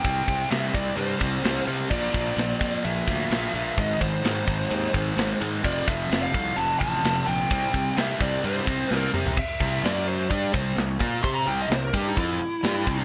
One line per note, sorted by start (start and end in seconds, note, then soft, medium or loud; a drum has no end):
0.00 0.26 C3 loud
0.00 0.48 G5 loud
0.04 0.20 C2 loud
0.04 0.27 G3 loud
0.04 0.27 C4 loud
0.04 kick loud
0.04 ride loud
0.27 0.44 C2 medium
0.27 0.49 C3 medium
0.27 0.50 G3 medium
0.27 0.50 C4 medium
0.27 kick medium
0.27 ride medium
0.51 0.72 C3 medium
0.51 0.67 C3 medium
0.51 0.72 G3 loud
0.51 0.72 C4 loud
0.51 0.75 E5 medium
0.51 snare loud
0.51 ride loud
0.73 0.90 C2 medium
0.73 0.95 C3 medium
0.73 0.96 G3 medium
0.73 0.96 C4 loud
0.73 0.97 D5 medium
0.73 kick medium
0.73 ride medium
0.96 1.13 G2 medium
0.96 1.18 C3 medium
0.96 1.19 G3 medium
0.96 1.19 C4 medium
0.96 1.63 C5 medium
0.96 ride loud
1.19 1.37 C2 medium
1.19 1.42 C3 medium
1.19 1.43 G3 medium
1.19 1.43 C4 medium
1.19 kick medium
1.19 ride medium
1.43 1.60 C2 medium
1.43 1.66 C3 loud
1.43 1.66 G3 loud
1.43 1.66 C4 loud
1.43 snare loud
1.43 ride loud
1.67 1.89 C3 medium
1.67 1.83 C3 medium
1.67 1.89 G3 medium
1.67 1.89 C4 loud
1.67 ride medium
1.91 2.07 A#1 loud
1.91 2.12 A#2 loud
1.91 2.13 F3 loud
1.91 2.13 A#3 loud
1.91 2.87 D5 loud
1.91 kick loud
1.91 crash loud
2.13 2.30 A#1 medium
2.13 2.35 A#2 medium
2.13 2.36 F3 medium
2.13 2.36 A#3 loud
2.13 kick medium
2.13 ride medium
2.37 2.53 A#1 medium
2.37 2.58 A#2 medium
2.37 2.59 F3 loud
2.37 2.60 A#3 loud
2.37 snare loud
2.37 ride loud
2.59 2.77 F2 medium
2.59 2.83 A#2 medium
2.59 2.83 F3 loud
2.59 2.83 A#3 loud
2.59 kick medium
2.59 ride medium
2.84 3.00 A#1 medium
2.84 3.06 A#2 medium
2.84 3.07 F3 loud
2.84 3.07 A#3 medium
2.84 3.80 E5 loud
2.84 ride loud
3.07 3.23 D2 medium
3.07 3.30 A#2 medium
3.07 3.30 F3 medium
3.07 3.31 A#3 medium
3.07 kick medium
3.07 ride medium
3.30 3.46 A#1 medium
3.30 3.53 A#2 loud
3.30 3.53 F3 loud
3.30 3.54 A#3 loud
3.30 snare loud
3.30 ride loud
3.54 3.70 A#1 loud
3.54 3.76 A#2 medium
3.54 3.76 F3 medium
3.54 3.76 A#3 medium
3.54 ride medium
3.77 3.93 G#1 loud
3.77 3.99 G#2 medium
3.77 3.99 D#3 loud
3.77 4.00 G#3 loud
3.77 4.00 D#5 loud
3.77 kick loud
3.77 ride loud
4.00 4.16 G#1 medium
4.00 4.22 G#2 medium
4.00 4.22 D#3 loud
4.00 4.23 G#3 loud
4.00 5.37 C5 medium
4.00 kick medium
4.00 ride medium
4.23 4.45 G#2 medium
4.23 4.40 G#2 medium
4.23 4.46 D#3 medium
4.23 4.46 G#3 medium
4.23 snare loud
4.23 ride loud
4.46 4.63 G#1 medium
4.46 4.68 G#2 medium
4.46 4.69 D#3 medium
4.46 4.70 G#3 loud
4.46 kick medium
4.46 ride medium
4.70 4.87 D#2 medium
4.70 4.92 G#2 medium
4.70 4.92 D#3 medium
4.70 4.93 G#3 medium
4.70 ride loud
4.93 5.10 G#1 medium
4.93 5.15 G#2 medium
4.93 5.16 D#3 medium
4.93 5.17 G#3 medium
4.93 kick medium
4.93 ride medium
5.16 5.33 G#1 loud
5.16 5.39 G#2 medium
5.16 5.39 D#3 loud
5.16 5.40 G#3 loud
5.16 snare loud
5.16 ride loud
5.40 5.62 G#2 medium
5.40 5.57 G#2 medium
5.40 5.63 D#3 loud
5.40 5.63 G#3 loud
5.40 ride medium
5.64 5.80 F1 loud
5.64 5.86 F2 loud
5.64 5.87 C3 loud
5.64 5.88 F3 loud
5.64 5.86 D5 loud
5.64 kick loud
5.64 crash loud
5.88 6.03 F1 medium
5.88 6.09 F2 medium
5.88 6.09 C3 loud
5.88 6.10 F3 medium
5.88 6.20 E5 loud
5.88 kick medium
5.88 ride medium
6.10 6.26 F1 medium
6.10 6.32 F2 medium
6.10 6.33 C3 medium
6.10 6.33 F3 medium
6.10 snare loud
6.10 ride loud
6.22 6.58 F5 loud
6.34 6.50 C2 medium
6.34 6.56 F2 medium
6.34 6.56 C3 loud
6.34 6.56 F3 loud
6.34 kick medium
6.34 ride medium
6.57 6.73 F1 loud
6.57 6.79 F2 medium
6.57 6.79 C3 medium
6.57 6.80 F3 loud
6.57 6.78 A5 loud
6.57 ride loud
6.79 6.97 A1 medium
6.79 7.02 F2 medium
6.79 7.03 C3 medium
6.79 7.03 F3 medium
6.79 7.28 A5 loud
6.79 kick medium
6.79 ride medium
7.03 7.20 F1 medium
7.03 7.26 F2 loud
7.03 7.27 C3 loud
7.03 7.27 F3 loud
7.03 snare loud
7.03 ride loud
7.27 7.43 A#1 loud
7.27 7.49 F2 medium
7.27 7.49 C3 medium
7.27 7.50 F3 loud
7.27 7.97 G5 loud
7.27 ride medium
7.50 7.66 C2 loud
7.50 7.72 C3 loud
7.50 7.73 G3 loud
7.50 7.73 C4 loud
7.50 kick loud
7.50 ride loud
7.74 7.90 C2 medium
7.74 7.96 C3 medium
7.74 7.96 G3 medium
7.74 7.97 C4 loud
7.74 kick loud
7.74 ride medium
7.97 8.13 C3 medium
7.97 8.19 C3 medium
7.97 8.19 G3 loud
7.97 8.20 C4 medium
7.97 8.21 E5 medium
7.97 snare loud
7.97 ride loud
8.20 8.36 C2 medium
8.20 8.42 C3 medium
8.20 8.43 G3 medium
8.20 8.43 C4 loud
8.20 8.45 D5 medium
8.20 kick medium
8.20 ride medium
8.44 8.60 G2 medium
8.44 8.66 C3 medium
8.44 8.66 G3 medium
8.44 8.67 C4 loud
8.44 8.94 C5 medium
8.44 ride loud
8.67 8.83 C2 medium
8.67 8.89 C3 medium
8.67 8.90 G3 medium
8.67 8.90 C4 medium
8.67 kick medium
8.67 ride medium
8.90 9.06 C2 medium
8.90 9.12 C3 loud
8.90 9.13 G3 loud
8.90 9.13 C4 loud
8.90 snare medium
8.94 9.11 A#4 medium
9.13 9.35 C3 medium
9.13 9.30 C3 medium
9.13 9.36 G3 medium
9.13 9.36 C4 medium
9.13 mid tom medium
9.26 floor tom medium
9.37 9.83 E5 loud
9.37 kick loud
9.37 crash loud
9.60 9.82 C2 loud
9.60 9.83 C3 loud
9.60 9.83 G3 loud
9.60 9.84 C4 loud
9.60 kick loud
9.83 10.27 F#2 loud
9.83 10.29 F#3 medium
9.83 10.29 C#4 loud
9.83 10.30 F#4 loud
9.83 10.07 D5 medium
9.83 snare loud
9.83 open hi-hat medium
10.08 10.30 C5 medium
10.30 10.52 G2 loud
10.30 10.52 G3 medium
10.30 10.53 D4 loud
10.30 10.53 G4 loud
10.30 10.53 D5 medium
10.30 kick loud
10.30 open hi-hat medium
10.52 10.76 C2 medium
10.52 10.75 C3 medium
10.52 10.76 G3 loud
10.52 10.76 C4 medium
10.52 10.76 C5 loud
10.52 kick loud
10.77 10.99 C2 medium
10.77 10.95 C3 medium
10.77 10.96 G3 medium
10.77 snare loud
10.77 open hi-hat medium
11.00 11.22 A#2 loud
11.00 11.22 A#3 medium
11.00 11.23 F4 medium
11.00 11.23 A#4 loud
11.00 kick loud
11.23 11.45 C3 loud
11.23 11.45 C4 medium
11.23 11.46 G4 loud
11.23 11.47 C5 loud
11.23 11.35 C6 medium
11.23 kick loud
11.23 open hi-hat medium
11.35 11.47 A#5 medium
11.46 11.69 C2 medium
11.46 11.69 C3 medium
11.46 11.69 G3 loud
11.46 11.69 C4 loud
11.46 11.59 G5 medium
11.62 11.72 D#5 medium
11.70 11.92 C2 medium
11.70 11.89 C3 medium
11.70 11.89 G3 medium
11.70 11.84 C5 medium
11.70 snare loud
11.70 open hi-hat medium
11.84 11.97 A#4 medium
11.93 12.15 G2 loud
11.93 12.16 G3 medium
11.93 12.16 D4 medium
11.93 12.16 G4 loud
11.93 kick loud
11.97 12.07 G4 medium
12.08 12.18 D#4 medium
12.16 12.39 F2 medium
12.16 12.39 F3 loud
12.16 12.40 C4 loud
12.16 13.04 E4 loud
12.16 12.40 F4 loud
12.16 kick loud
12.16 open hi-hat medium
12.40 muted overdriven electric guitar stroke medium
12.40 muted fingered electric bass stroke soft
12.63 12.85 G2 medium
12.63 12.86 G3 loud
12.63 12.86 D4 loud
12.63 12.87 G4 loud
12.63 snare loud
12.63 open hi-hat medium
12.87 13.04 C2 medium
12.87 13.04 C3 loud
12.87 13.04 G3 medium
12.87 13.04 C4 loud
12.87 kick loud